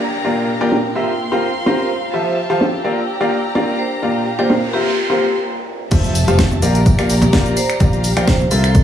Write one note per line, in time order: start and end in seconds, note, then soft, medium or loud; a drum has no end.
0.00 0.53 D4 medium
0.00 0.23 G4 medium
0.00 1.43 A#4 medium
0.00 0.23 D5 medium
0.00 1.43 G5 medium
0.00 0.94 A#5 medium
0.00 downlifter medium
0.24 0.48 A#2 medium
0.24 0.95 A#3 medium
0.24 0.48 A#3 medium
0.24 1.43 A#3 medium
0.24 0.47 F4 medium
0.24 0.95 G4 medium
0.24 0.47 G4 medium
0.24 0.47 A#4 medium
0.24 0.47 D5 medium
0.24 0.94 F5 medium
0.24 0.47 F5 medium
0.53 3.32 F4 medium
0.61 0.74 A#2 medium
0.61 0.74 A#3 medium
0.61 0.74 F4 medium
0.61 0.74 G4 medium
0.61 0.74 A#4 medium
0.61 0.74 D5 medium
0.61 0.74 G5 loud
0.72 snare loud
0.95 1.10 C4 medium
0.95 1.10 F4 medium
0.95 1.10 G4 medium
0.95 1.10 A#4 medium
0.95 2.12 A#4 medium
0.95 1.10 C5 medium
0.95 1.10 E5 medium
0.95 2.83 F5 medium
0.95 2.12 C6 medium
1.08 2.42 C5 medium
1.32 1.45 C4 medium
1.32 1.45 F4 medium
1.32 1.45 G4 medium
1.32 1.45 A#4 medium
1.32 1.45 C5 medium
1.32 1.45 F5 medium
1.32 snare soft
1.49 2.14 A#5 medium
1.66 1.89 C4 medium
1.66 1.89 F4 medium
1.66 1.89 G4 medium
1.66 1.89 A#4 medium
1.66 1.89 C5 medium
1.66 1.89 F5 medium
1.66 snare loud
2.13 2.36 F3 medium
2.13 2.36 F4 medium
2.13 4.71 G4 medium
2.13 2.36 G4 medium
2.13 2.36 A4 medium
2.13 2.36 C5 medium
2.13 2.84 E5 medium
2.13 2.36 E5 medium
2.13 2.84 A5 medium
2.46 2.63 F3 medium
2.46 2.63 F4 medium
2.46 2.63 G4 medium
2.46 2.84 A4 medium
2.46 2.63 A4 medium
2.46 2.63 C5 medium
2.46 2.63 F5 loud
2.46 5.21 G5 medium
2.46 3.32 E6 medium
2.61 snare loud
2.84 2.99 A#3 medium
2.84 4.31 D4 medium
2.84 2.99 F4 medium
2.84 2.99 G4 medium
2.84 2.99 A#4 medium
2.84 4.01 D5 medium
2.84 2.99 D5 medium
2.84 2.99 F5 medium
2.84 4.71 A#5 medium
3.19 3.34 A#3 medium
3.19 3.34 F4 medium
3.19 3.34 G4 medium
3.19 5.21 A#4 medium
3.19 3.34 A#4 medium
3.19 3.34 D5 medium
3.19 3.34 F5 medium
3.55 3.78 A#3 medium
3.55 3.78 F4 medium
3.55 3.78 G4 medium
3.55 3.78 A#4 medium
3.55 3.78 D5 medium
3.55 3.78 F5 loud
3.55 snare loud
3.79 3.95 C5 medium
4.02 4.25 A#2 medium
4.02 5.21 A#3 medium
4.02 4.73 A#3 medium
4.02 4.25 A#3 medium
4.02 4.25 F4 medium
4.02 4.25 G4 medium
4.02 4.25 A#4 medium
4.02 4.25 D5 medium
4.02 5.43 F5 medium
4.02 4.25 F5 medium
4.02 noise sweep medium
4.17 5.44 F4 medium
4.39 4.52 A#2 medium
4.39 4.52 A#3 medium
4.39 4.52 F4 medium
4.39 4.52 G4 medium
4.39 4.52 A#4 medium
4.39 4.46 C5 medium
4.39 4.52 D5 medium
4.39 4.52 G5 loud
4.50 4.58 C5 medium
4.50 snare loud
4.73 4.88 C4 medium
4.73 4.88 F4 medium
4.73 5.40 G4 medium
4.73 4.88 G4 medium
4.73 4.88 A#4 medium
4.73 5.44 A#4 medium
4.73 4.88 C5 medium
4.73 4.88 E5 medium
4.73 5.44 C6 medium
4.87 5.44 A#5 medium
4.97 cabasa soft
5.10 5.23 C4 medium
5.10 5.23 F4 medium
5.10 5.23 G4 medium
5.10 5.23 A#4 medium
5.10 5.23 C5 medium
5.10 5.23 F5 medium
5.10 snare soft
5.91 6.25 F1 loud
5.91 6.14 F3 medium
5.91 6.14 F4 medium
5.91 8.84 G4 medium
5.91 6.14 G4 medium
5.91 8.49 G4 medium
5.91 6.14 A4 medium
5.91 6.14 C5 medium
5.91 6.14 E5 medium
5.91 6.62 E5 medium
5.91 6.62 A5 medium
5.91 kick loud
5.91 closed hi-hat medium
5.91 crash loud
5.91 tambourine medium
5.91 impact medium
5.91 high conga medium
5.91 cabasa soft
6.04 closed hi-hat soft
6.04 cabasa soft
6.15 open hi-hat loud
6.15 tambourine medium
6.15 cabasa medium
6.24 6.60 F1 loud
6.24 6.41 F3 medium
6.24 6.41 F4 medium
6.24 6.41 G4 medium
6.24 6.41 A4 medium
6.24 6.41 C5 medium
6.24 7.10 E5 medium
6.24 6.41 F5 loud
6.24 6.62 A5 medium
6.24 closed hi-hat medium
6.28 tambourine soft
6.28 cabasa soft
6.39 kick loud
6.39 snare loud
6.39 closed hi-hat medium
6.39 tambourine medium
6.39 cabasa soft
6.51 high conga medium
6.51 cabasa soft
6.62 6.96 A#1 loud
6.62 6.77 A#3 medium
6.62 6.77 F4 medium
6.62 6.77 G4 medium
6.62 6.77 A#4 medium
6.62 6.77 D5 medium
6.62 7.79 D5 medium
6.62 6.77 F5 medium
6.62 8.50 A#5 medium
6.62 open hi-hat loud
6.62 tambourine medium
6.62 cabasa medium
6.75 closed hi-hat medium
6.75 tambourine soft
6.75 cabasa soft
6.86 8.09 D5 medium
6.86 kick loud
6.86 closed hi-hat medium
6.86 tambourine medium
6.86 cabasa soft
6.97 7.31 A#1 loud
6.97 7.12 A#3 medium
6.97 7.12 F4 medium
6.97 7.12 G4 medium
6.97 7.12 A#4 medium
6.97 7.12 D5 medium
6.97 7.12 F5 loud
6.97 8.84 A#5 medium
6.97 finger snap medium
6.97 closed hi-hat soft
6.97 tambourine soft
6.97 cabasa soft
7.10 open hi-hat loud
7.10 tambourine medium
7.10 cabasa medium
7.22 closed hi-hat medium
7.22 tambourine soft
7.22 high conga loud
7.22 cabasa soft
7.33 7.56 A#3 medium
7.33 7.56 F4 medium
7.33 7.56 G4 medium
7.33 7.56 A#4 medium
7.33 7.56 D5 medium
7.33 7.56 F5 loud
7.33 kick loud
7.33 snare loud
7.33 closed hi-hat medium
7.33 tambourine soft
7.33 cabasa soft
7.46 closed hi-hat soft
7.46 cabasa soft
7.57 7.73 C5 medium
7.57 open hi-hat loud
7.57 tambourine loud
7.57 cabasa medium
7.70 finger snap medium
7.70 closed hi-hat medium
7.70 tambourine soft
7.70 cabasa soft
7.80 8.14 A#1 loud
7.80 8.03 A#3 medium
7.80 8.03 F4 medium
7.80 8.03 G4 medium
7.80 8.03 A#4 medium
7.80 8.03 D5 medium
7.80 8.50 F5 medium
7.80 8.03 F5 medium
7.80 kick loud
7.80 closed hi-hat medium
7.80 tambourine medium
7.80 high conga loud
7.80 cabasa soft
7.93 closed hi-hat soft
7.93 cabasa soft
8.01 8.84 F5 medium
8.01 open hi-hat loud
8.01 tambourine loud
8.01 cabasa medium
8.17 8.49 A#1 loud
8.17 8.30 A#3 loud
8.17 8.30 F4 medium
8.17 8.30 G4 medium
8.17 8.30 A#4 medium
8.17 8.24 C5 medium
8.17 8.30 D5 medium
8.17 8.30 G5 loud
8.17 finger snap medium
8.17 closed hi-hat medium
8.17 tambourine soft
8.17 cabasa soft
8.28 8.36 C5 medium
8.28 kick loud
8.28 snare loud
8.28 closed hi-hat medium
8.28 tambourine medium
8.28 cabasa soft
8.40 high conga medium
8.40 cabasa soft
8.51 8.84 C2 loud
8.51 8.66 C4 medium
8.51 8.66 F4 medium
8.51 8.84 F4 medium
8.51 8.66 G4 medium
8.51 8.59 A4 medium
8.51 8.66 A#4 medium
8.51 8.84 A#4 medium
8.51 8.66 C5 medium
8.51 8.66 E5 medium
8.51 8.84 F5 medium
8.51 8.84 C6 medium
8.51 open hi-hat loud
8.51 tambourine loud
8.51 cabasa medium
8.63 8.71 A4 medium
8.63 8.84 C5 medium
8.63 finger snap medium
8.63 closed hi-hat medium
8.63 tambourine soft
8.63 cabasa soft
8.75 kick loud
8.75 closed hi-hat medium
8.75 tambourine medium
8.75 cabasa soft